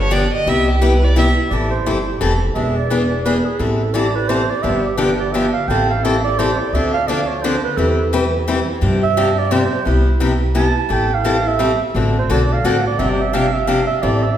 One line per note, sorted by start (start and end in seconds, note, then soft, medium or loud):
0.00 0.26 G1 loud
0.00 0.14 C#5 loud
0.11 0.23 D3 loud
0.11 0.22 F3 loud
0.11 0.23 B3 loud
0.11 0.23 D4 loud
0.11 0.23 G4 loud
0.11 0.33 D5 medium
0.34 0.51 D#5 medium
0.46 1.30 C2 loud
0.46 0.68 C3 medium
0.46 0.68 G3 medium
0.46 0.68 B3 medium
0.46 0.68 E4 medium
0.46 0.68 G4 medium
0.46 0.69 E5 loud
0.71 0.85 G4 medium
0.81 0.93 C3 medium
0.81 0.93 G3 medium
0.81 0.93 B3 medium
0.81 0.93 E4 loud
0.81 0.93 G4 loud
0.81 1.06 B4 medium
1.04 1.17 D5 medium
1.16 1.27 C3 loud
1.16 1.27 G3 loud
1.16 1.28 B3 medium
1.16 1.27 E4 loud
1.16 1.28 G4 loud
1.16 1.30 E5 medium
1.50 1.79 A1 medium
1.50 1.72 E3 medium
1.50 1.72 G3 medium
1.50 1.73 C4 medium
1.50 1.73 E4 medium
1.50 1.73 A4 medium
1.50 1.70 D5 medium
1.71 2.17 C5 medium
1.86 2.16 G1 medium
1.86 1.97 E3 medium
1.86 1.97 G3 medium
1.86 1.97 C4 medium
1.86 1.97 E4 medium
1.86 1.98 A4 medium
2.21 2.51 F1 medium
2.21 2.32 E3 medium
2.21 2.32 G3 medium
2.21 2.32 C4 medium
2.21 2.32 E4 medium
2.21 2.32 A4 loud
2.55 3.39 E1 medium
2.55 2.76 E3 medium
2.55 2.77 B3 medium
2.55 2.77 D4 medium
2.55 2.77 G#4 medium
2.55 2.78 E5 medium
2.76 3.24 D5 medium
2.90 3.01 E3 medium
2.90 3.02 B3 medium
2.90 3.02 D4 loud
2.90 3.02 G#4 loud
3.25 3.36 E3 medium
3.25 3.37 B3 medium
3.25 3.37 D4 loud
3.25 3.37 G#4 loud
3.25 3.46 B4 medium
3.45 3.61 G#4 medium
3.59 4.43 A1 medium
3.59 3.81 E3 medium
3.59 3.80 G3 medium
3.59 3.81 C4 medium
3.59 3.81 E4 medium
3.59 3.96 A4 medium
3.59 3.81 A4 medium
3.94 4.05 E3 medium
3.94 4.06 G3 loud
3.94 4.06 C4 medium
3.94 4.06 E4 medium
3.94 4.06 A4 loud
3.94 4.17 D5 loud
4.16 4.30 B4 loud
4.28 4.40 E3 medium
4.28 4.40 G3 medium
4.28 4.40 C4 loud
4.28 4.41 E4 loud
4.28 4.41 A4 loud
4.28 4.52 C5 medium
4.50 4.64 D5 medium
4.63 5.48 G1 medium
4.63 4.85 D3 medium
4.63 4.85 F3 medium
4.63 4.85 B3 medium
4.63 4.85 D4 medium
4.63 4.85 G4 medium
4.63 4.85 E5 medium
4.85 5.00 G4 medium
4.97 5.09 D3 loud
4.97 5.10 F3 loud
4.97 5.10 B3 medium
4.97 5.10 D4 loud
4.97 5.10 G4 medium
4.97 5.19 B4 medium
5.20 5.34 D5 medium
5.32 5.45 D3 medium
5.32 5.45 F3 medium
5.32 5.45 B3 loud
5.32 5.45 D4 medium
5.32 5.46 G4 medium
5.32 5.53 E5 medium
5.53 5.70 F5 medium
5.68 6.52 A1 medium
5.68 5.90 E3 medium
5.68 5.90 G3 medium
5.68 5.90 C4 medium
5.68 5.91 E4 medium
5.68 5.91 A4 medium
5.68 5.90 G5 medium
5.90 6.05 F5 medium
6.04 6.15 E3 medium
6.04 6.15 G3 medium
6.04 6.15 C4 medium
6.04 6.15 E4 loud
6.04 6.15 A4 loud
6.04 6.24 E5 medium
6.25 6.40 D5 loud
6.39 6.50 E3 medium
6.39 6.50 G3 loud
6.39 6.50 C4 loud
6.39 6.50 E4 loud
6.39 6.50 A4 medium
6.39 6.60 C5 medium
6.59 6.76 D5 medium
6.73 7.57 D2 medium
6.73 6.95 D3 medium
6.73 6.95 F3 medium
6.73 6.95 C4 medium
6.73 6.95 D4 medium
6.73 6.95 A4 medium
6.73 6.93 E5 medium
6.94 7.09 F5 loud
7.08 7.19 D3 medium
7.08 7.20 F3 medium
7.08 7.20 C4 medium
7.08 7.20 D4 loud
7.08 7.20 A4 loud
7.08 7.29 D5 medium
7.28 7.44 C#5 medium
7.42 7.54 D3 loud
7.42 7.54 F3 loud
7.42 7.55 C4 medium
7.42 7.55 D4 loud
7.42 7.55 A4 loud
7.42 7.64 C5 medium
7.64 7.79 B4 loud
7.77 8.61 E2 loud
7.77 7.98 E3 medium
7.77 7.99 G3 medium
7.77 7.99 C4 medium
7.77 7.99 E4 medium
7.77 8.12 A4 medium
7.77 7.99 B4 medium
8.13 8.24 E3 medium
8.13 8.24 G3 loud
8.13 8.24 C4 medium
8.13 8.24 E4 loud
8.13 8.24 B4 loud
8.48 8.58 E3 medium
8.48 8.59 G3 medium
8.48 8.59 C4 medium
8.48 8.59 E4 loud
8.48 8.59 B4 loud
8.81 9.65 G2 loud
8.81 9.02 C3 medium
8.81 9.03 F3 medium
8.81 9.03 C4 medium
8.81 9.03 D4 medium
8.81 9.03 G4 medium
9.03 9.40 E5 loud
9.17 9.28 C3 loud
9.17 9.28 F3 loud
9.17 9.28 C4 medium
9.17 9.28 D4 loud
9.17 9.28 G4 loud
9.38 9.54 D5 loud
9.51 9.62 C3 medium
9.51 9.62 F3 loud
9.51 9.63 C4 loud
9.51 9.62 D4 loud
9.51 9.63 G4 loud
9.51 9.88 C5 medium
9.85 10.70 C2 medium
9.85 10.07 C3 medium
9.85 10.07 G3 medium
9.85 10.07 B3 medium
9.85 10.07 E4 medium
9.85 10.07 G4 medium
9.85 10.21 B4 medium
10.20 10.32 C3 medium
10.20 10.32 G3 medium
10.20 10.32 B3 medium
10.20 10.32 E4 loud
10.20 10.32 G4 loud
10.55 10.66 C3 medium
10.55 10.66 G3 medium
10.55 10.66 B3 loud
10.55 10.67 E4 medium
10.55 10.67 G4 medium
10.55 10.94 A5 loud
10.89 11.74 A1 medium
10.89 11.11 E3 medium
10.89 11.11 G3 medium
10.89 11.11 C4 medium
10.89 11.11 E4 medium
10.89 11.11 A4 medium
10.89 11.16 G5 medium
11.14 11.49 F5 loud
11.24 11.36 E3 medium
11.24 11.36 G3 medium
11.24 11.36 C4 loud
11.24 11.36 E4 medium
11.24 11.37 A4 loud
11.48 11.82 E5 loud
11.59 11.71 E3 medium
11.59 11.71 G3 loud
11.59 11.71 C4 loud
11.59 11.71 E4 loud
11.59 11.71 A4 loud
11.95 12.23 A1 loud
11.95 12.16 D3 medium
11.95 12.16 A3 medium
11.95 12.16 C4 medium
11.95 12.17 F#4 medium
11.95 12.16 A4 medium
12.19 12.33 C5 medium
12.29 12.59 B1 medium
12.29 12.41 D3 loud
12.29 12.41 A3 loud
12.29 12.41 C4 medium
12.29 12.41 F#4 medium
12.29 12.41 A4 loud
12.29 12.54 D5 medium
12.53 12.67 F5 loud
12.64 12.94 A1 medium
12.64 12.76 D3 medium
12.64 12.76 A3 medium
12.64 12.76 C4 medium
12.64 12.76 F#4 loud
12.64 12.76 A4 loud
12.64 12.86 F#5 loud
12.87 13.01 D5 medium
12.99 13.82 G1 medium
12.99 13.20 C3 medium
12.99 13.20 F3 medium
12.99 13.20 C4 medium
12.99 13.20 D4 medium
12.99 13.20 G4 medium
12.99 13.12 E5 loud
13.10 13.23 D5 medium
13.22 13.35 E5 medium
13.33 13.45 C3 medium
13.33 13.45 F3 loud
13.33 13.45 C4 medium
13.33 13.45 D4 medium
13.33 13.45 G4 loud
13.33 13.55 F5 loud
13.54 13.70 E5 loud
13.67 13.79 C3 medium
13.67 13.79 F3 loud
13.67 13.79 C4 medium
13.67 13.80 D4 loud
13.67 13.80 G4 loud
13.67 13.87 F5 medium
13.87 14.04 E5 loud
14.02 14.38 A1 loud
14.02 14.24 E3 medium
14.02 14.24 G3 medium
14.02 14.24 C4 medium
14.02 14.24 E4 medium
14.02 14.24 A4 medium
14.02 14.25 D5 medium
14.23 14.38 E5 loud